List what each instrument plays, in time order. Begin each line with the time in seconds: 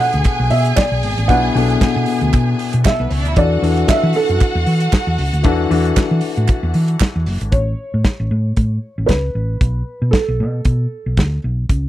Already playing: grand piano B2 B3 D4 A4, string section G#4 G#5
0.00 felt piano F#5
0.13 fingered electric bass D2, closed hi-hat
0.24 kick, clap, closed hi-hat
0.40 fingered electric bass B1
0.50 fingered electric bass B2, felt piano E5, open hi-hat
0.65 closed hi-hat
0.76 felt piano D5, kick, snare, clap, closed hi-hat
0.92 fingered electric bass B1
1.03 fingered electric bass G#1, open hi-hat
1.17 fingered electric bass A1, closed hi-hat
1.28 fingered electric bass B1, grand piano B2 B3 D4 E4, felt piano F#5, kick, closed hi-hat
1.55 fingered electric bass B1, grand piano B2 B3 D4 A4, open hi-hat
1.70 closed hi-hat
1.81 muted fingered electric bass stroke, kick, snare, clap, closed hi-hat
1.96 fingered electric bass B2
2.06 open hi-hat
2.21 fingered electric bass D2, closed hi-hat
2.33 fingered electric bass B2, kick, clap, closed hi-hat
2.59 open hi-hat
2.73 fingered electric bass B2, closed hi-hat
2.84 string section G#3 G#4, felt piano E5, kick, snare, clap, closed hi-hat
2.93 string section A3 A4
3.00 fingered electric bass B1, string section B3 B4
3.10 fingered electric bass C#2, string section C#4 C#5, open hi-hat
3.19 string section D4 D5
3.25 fingered electric bass D2, string section E4 E5, closed hi-hat
3.36 fingered electric bass E2, grand piano E3 D4 F#4 A4, string section F#4 F#5, felt piano D5, kick, closed hi-hat
3.62 fingered electric bass E2, grand piano E3 D4 F#4 A4, open hi-hat
3.77 closed hi-hat
3.88 felt piano E5, kick, snare, clap, closed hi-hat
4.03 fingered electric bass E3
4.13 felt piano A4, open hi-hat
4.29 fingered electric bass F#2, closed hi-hat
4.40 kick, clap, closed hi-hat
4.55 fingered electric bass E2
4.67 fingered electric bass E3, open hi-hat
4.80 closed hi-hat
4.92 kick, snare, clap, closed hi-hat
5.07 fingered electric bass E2
5.18 fingered electric bass C#2, open hi-hat
5.33 fingered electric bass D2, closed hi-hat
5.43 fingered electric bass E2, grand piano E3 D4 F#4 A4, kick, closed hi-hat
5.70 fingered electric bass E2, grand piano E3 D4 F#4 A4, open hi-hat
5.85 closed hi-hat
5.97 kick, snare, clap, closed hi-hat
6.11 fingered electric bass E3
6.21 open hi-hat
6.36 fingered electric bass A2, closed hi-hat
6.48 kick, clap, closed hi-hat
6.63 fingered electric bass E2
6.74 fingered electric bass E3, open hi-hat
6.88 closed hi-hat
7.00 kick, snare, clap, closed hi-hat
7.16 fingered electric bass E2
7.26 fingered electric bass F#1, open hi-hat
7.41 fingered electric bass G#1, closed hi-hat
7.52 fingered electric bass A1, felt piano C#5, kick, closed hi-hat
7.94 fingered electric bass A2
8.04 kick, snare, closed hi-hat
8.20 fingered electric bass A1
8.31 fingered electric bass A2
8.57 fingered electric bass A2, kick, closed hi-hat
8.98 fingered electric bass A1
9.06 fingered electric bass C#2, felt piano B4, kick, snare, closed hi-hat
9.35 fingered electric bass A1
9.61 fingered electric bass B1, kick, closed hi-hat
10.02 fingered electric bass B2
10.11 felt piano A4, kick, snare, closed hi-hat
10.28 fingered electric bass B1
10.40 fingered electric bass B2
10.65 fingered electric bass B2, kick, closed hi-hat
11.06 fingered electric bass B1
11.17 fingered electric bass D2, kick, snare, closed hi-hat
11.44 fingered electric bass B1
11.69 fingered electric bass C#2, kick, closed hi-hat